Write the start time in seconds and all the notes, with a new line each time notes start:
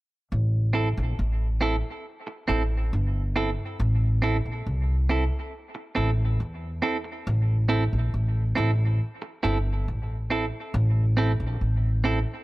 0.32 A1
0.73 C4 E4 A4
0.97 A#1
1.19 A1
1.61 C4 E4 A4
2.27 muted clean electric guitar stroke
2.48 A1 C4 E4 A4
2.93 G1
3.36 C4 E4 A4
3.80 A1
4.22 C4 E4 A4
4.45 A#1
4.66 C2
5.09 C4 E4 A4
5.75 muted clean electric guitar stroke
5.95 A1 C4 E4 A4
6.40 E2
6.82 C4 E4 A4
7.04 muted clean electric guitar stroke
7.27 A1
7.69 C4 E4 A4
7.93 A#1
8.14 A1
8.55 A1 C4 E4 A4
9.22 muted clean electric guitar stroke
9.43 G1 C4 E4 A4
9.88 A1
10.30 C4 E4 A4
10.74 A1
11.17 C4 E4 A4
11.40 A#1
11.61 A1
12.04 C4 E4 A4